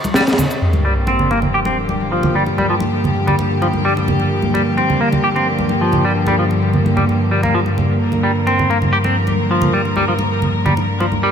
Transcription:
0.04 ride, high conga, shaker
0.14 G3, snare, ride, shaker
0.20 snare, ride
0.27 snare, ride, shaker
0.32 snare, ride
0.38 snare, ride, low conga, shaker
0.51 ride, shaker
0.61 G2 D3 F3 A#3 G4, sub drop
0.73 muted conga, high conga
0.85 G3
1.07 C4, muted conga
1.19 low conga
1.31 A#3, muted conga
1.42 low conga
1.54 G4
1.65 C4, muted conga
1.89 muted conga, high conga
2.12 F3
2.23 muted conga, low conga
2.35 G3
2.46 muted conga
2.58 G3, high conga
2.70 F3
2.80 muted conga
3.04 muted conga, low conga
3.27 G3, low conga
3.39 muted conga
3.62 F3, muted conga
3.73 high conga
3.85 G3
3.97 muted conga
4.08 low conga
4.20 muted conga
4.42 high conga
4.54 G3, muted conga
4.77 C4, muted conga
4.90 low conga
5.01 A#3
5.12 muted conga, low conga
5.24 G4
5.36 C4, muted conga
5.59 high conga
5.69 muted conga
5.81 F3
5.92 muted conga, low conga
6.05 G3
6.27 G3, muted conga, high conga
6.39 F3
6.51 muted conga
6.73 low conga
6.86 muted conga
6.97 G3, low conga
7.09 muted conga
7.31 G3
7.43 A#3, muted conga, high conga
7.54 F3
7.66 muted conga
7.78 low conga
8.01 A#4
8.12 muted conga, high conga
8.23 G3
8.47 C4, muted conga
8.59 low conga
8.70 A#3, muted conga
8.82 low conga
8.93 G4
9.04 C4, muted conga
9.27 muted conga, high conga
9.51 F3
9.62 muted conga, low conga
9.73 G3
9.85 muted conga
9.96 G3, high conga
10.08 F3
10.19 muted conga
10.42 muted conga, low conga
10.66 G3, low conga
10.77 muted conga
11.00 F3, muted conga
11.12 high conga
11.23 G3

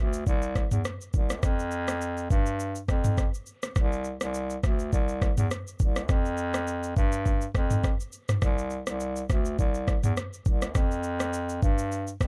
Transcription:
Already playing: D2
0.13 shaker
0.27 C2, kick, shaker
0.42 shaker
0.55 kick, cross-stick, shaker
0.71 E2, mid tom, shaker
0.85 cross-stick, shaker
1.01 shaker
1.13 C2, kick, shaker
1.30 cross-stick, shaker
1.43 F2, kick, cross-stick, shaker
1.59 shaker
1.71 shaker
1.88 cross-stick, shaker
2.02 shaker
2.17 shaker
2.30 G2, kick, shaker
2.46 shaker
2.60 shaker
2.75 shaker
2.88 F2, kick, cross-stick, shaker
3.04 mid tom, shaker
3.18 kick, cross-stick, shaker
3.34 shaker
3.46 shaker
3.63 cross-stick, shaker
3.76 C2, kick, cross-stick, shaker
3.92 shaker
4.04 shaker
4.21 C2, cross-stick, shaker
4.34 shaker
4.50 shaker
4.63 D2, kick, cross-stick, shaker
4.79 shaker
4.93 C2, kick, shaker
5.08 shaker
5.22 kick, cross-stick, shaker
5.38 E2, mid tom, shaker
5.51 cross-stick, shaker
5.67 shaker
5.80 C2, kick, shaker
5.96 cross-stick, shaker
6.09 F2, kick, cross-stick, shaker
6.25 shaker
6.37 shaker
6.54 cross-stick, shaker
6.67 shaker
6.83 shaker
6.97 G2, kick, shaker
7.12 shaker
7.26 kick, shaker
7.41 shaker
7.55 F2, kick, cross-stick, shaker
7.71 mid tom, shaker
7.84 kick, cross-stick, shaker
8.00 shaker
8.12 shaker
8.29 cross-stick, mid tom, shaker
8.42 C2, kick, cross-stick, shaker
8.58 shaker
8.70 shaker
8.87 C2, cross-stick, shaker
9.00 shaker
9.16 shaker
9.30 D2, kick, cross-stick, shaker
9.45 shaker
9.59 C2, kick, shaker
9.75 shaker
9.88 kick, cross-stick, shaker
10.04 E2, mid tom, shaker
10.17 cross-stick, shaker
10.33 shaker
10.46 C2, kick, shaker
10.62 cross-stick, shaker
10.75 F2, kick, cross-stick, shaker
10.91 shaker
11.03 shaker
11.20 cross-stick, shaker
11.33 shaker
11.49 shaker
11.63 G2, kick, shaker
11.78 shaker
11.92 shaker
12.07 shaker
12.21 F2, kick, cross-stick, shaker

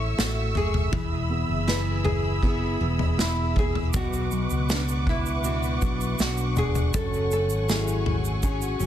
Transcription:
Already playing: A1 A2 A3 C#4 E4 E5 C#6 E6
0.18 A1 A3 F#4, snare
0.55 F#1 G#4, floor tom
0.74 floor tom
0.92 E1 E3 G#4 B5, kick, floor tom
1.30 B3
1.49 F#1
1.67 E3 B3 E4 G#4 B4, snare
2.04 G#4, floor tom
2.43 B3 E4 G#4, kick
2.81 E1 E3 B3
2.99 floor tom
3.18 B3 E4, snare
3.56 G#4, kick, floor tom
3.75 floor tom
3.93 B1 B2 B3 F#4 B4 F#5 C#6 D6, kick, floor tom, shaker
4.13 shaker
4.31 F#3, shaker
4.50 C#2, shaker
4.69 B3 D4 F#4, snare, shaker
4.89 shaker
5.07 E4, kick, floor tom
5.26 shaker
5.44 B2 D4 F#4, shaker
5.63 shaker
5.81 B1 F#3 D4, kick, shaker
6.01 shaker
6.19 B1 B2 D4 F#4, snare, shaker
6.37 shaker
6.56 E1 G#4, floor tom, shaker
6.75 floor tom, shaker
6.93 F#2 F#3 A3 C#4 A4 G#5, kick, floor tom, shaker
7.13 shaker
7.31 C#4 A4, shaker
7.50 G#1, shaker
7.69 F#3 C#4 E4 F#4 G#4, snare, shaker
7.88 shaker
8.06 floor tom
8.25 shaker
8.43 C#4 F#4 G#4, kick, shaker
8.62 shaker
8.80 F#1 F#3 C#4, shaker

